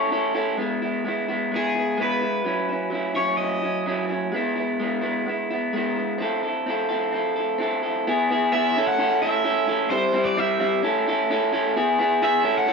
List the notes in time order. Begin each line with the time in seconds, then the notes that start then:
Already playing: E4 A4 C#5
0.11 C#4 E4 A4
0.34 C#4 E4 A4
0.58 G#3 B3 E4
0.82 B3 E4
1.05 G#3 B3 E4
1.28 G#3 B3 E4
1.52 G#3 B3 E4 G#4
1.75 B3 E4
1.98 G#3 B3 E4
2.02 B4
2.21 B3 E4
2.44 F#3 C#4 E4
2.69 C#4 E4
2.90 F#3 C#4 E4
3.14 F#3 C#4 E4 C#5
3.36 F#3 C#4 D#5
3.40 E4
3.62 C#4 E4
3.86 F#3 C#4 E4
4.09 C#4 E4
4.32 G#3 B3
4.36 E4
4.55 E4
4.60 B3
4.80 G#3 B3 E4
5.01 G#3 B3 E4
5.26 G#3 B3 E4
5.50 B3 E4
5.73 G#3 B3
5.77 E4
5.95 B3 E4
6.18 C4 E4
6.22 A4
6.43 E4 A4
6.66 C4 E4 A4
6.89 C4 E4 A4
7.12 C4 E4 A4
7.36 E4 A4
7.58 C4 E4 A4
7.83 E4 A4
8.07 B3 E4 G#4
8.30 B3 E4 G#4
8.52 B3 E4 G#4 E5
8.77 C#4 E4 A4
8.87 F#5
8.99 C#4 E4 A4
9.22 C#4 E4 A4 E5
9.44 C#4 E4 A4
9.67 C#4 E4 A4
9.90 G3 C4 E4 C5
10.13 G3 C4 E4
10.25 D5
10.37 G3 C4 E4 E5
10.60 G3 C4 E4
10.83 C#4 E4 A4
11.07 C#4 E4 A4
11.30 C#4 E4 A4
11.53 C#4 E4 A4
11.76 B3 E4 G#4
11.99 B3 E4 G#4
12.22 B3 E4 G#4 E5
12.43 C#4 E4 A4
12.58 F#5
12.67 C#4 E4 A4